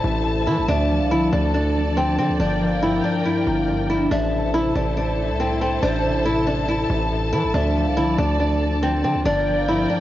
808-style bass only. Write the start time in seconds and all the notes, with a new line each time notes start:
0.04 A1
0.47 E3
0.58 A1
0.68 D2
1.00 C2
1.33 D2
2.18 D3
2.29 D2
2.40 G1
3.47 G1
4.11 A1
4.75 A1
5.29 C2
5.83 A1
6.90 A1
7.33 E3
7.43 A1
7.54 D2
7.86 C2
8.18 D2
9.04 D3
9.15 D2
9.25 G1